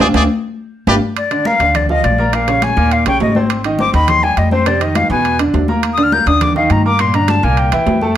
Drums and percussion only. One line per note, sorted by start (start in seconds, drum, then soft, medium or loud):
0.14 high conga loud
0.14 high timbale loud
0.87 high conga medium
0.87 high timbale loud
1.16 high conga soft
1.16 high timbale medium
1.31 high conga soft
1.31 high timbale medium
1.45 high conga loud
1.60 high conga soft
1.60 high timbale medium
1.75 high conga soft
1.75 low conga medium
1.75 high timbale medium
1.89 high conga soft
1.89 low conga medium
2.04 high conga medium
2.04 high timbale medium
2.18 high conga medium
2.33 high conga soft
2.33 high timbale loud
2.47 high conga soft
2.47 high timbale medium
2.62 high conga loud
2.62 high timbale medium
2.76 high conga soft
2.91 high conga soft
2.91 high timbale medium
3.06 high conga soft
3.06 high timbale loud
3.20 high conga medium
3.20 low timbale medium
3.35 high conga medium
3.50 high conga soft
3.50 high timbale loud
3.64 high conga soft
3.64 high timbale medium
3.79 high conga medium
3.93 high conga soft
3.93 high timbale medium
4.08 high conga soft
4.08 low conga medium
4.08 high timbale medium
4.23 high conga soft
4.37 high conga medium
4.37 high timbale medium
4.51 high conga medium
4.66 high conga soft
4.66 high timbale medium
4.81 high conga soft
4.81 high timbale medium
4.95 high conga loud
4.95 high timbale medium
5.10 high conga soft
5.24 high conga soft
5.24 high timbale medium
5.39 high conga soft
5.39 high timbale medium
5.54 high conga medium
5.54 low timbale medium
5.68 high conga medium
5.83 high conga soft
5.83 high timbale loud
5.98 high conga soft
5.98 high timbale medium
6.12 high conga loud
6.27 high conga soft
6.27 high timbale medium
6.41 high conga soft
6.41 low conga medium
6.41 high timbale medium
6.56 high conga soft
6.56 low conga medium
6.70 high conga medium
6.70 high timbale medium
6.99 high conga soft
6.99 high timbale loud
7.14 high conga soft
7.14 high timbale medium
7.28 high conga loud
7.28 high timbale medium
7.43 high conga soft
7.57 high conga soft
7.57 high timbale medium
7.72 high conga soft
7.72 high timbale loud
7.87 high conga medium
7.87 low timbale medium
8.01 high conga medium